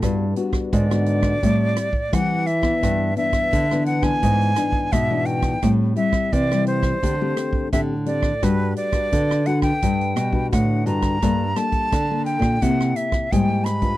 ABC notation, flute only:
X:1
M:4/4
L:1/16
Q:1/4=86
K:G
V:1 name="Flute"
z4 d8 f2 e2- | e2 e4 f _a4- a e2 g2 | z2 e2 d2 c6 e2 d2 | B2 d4 f g4- g f2 _b2- |
[K:Gm] b2 a4 g2 ^f2 =e2 g2 =b2 |]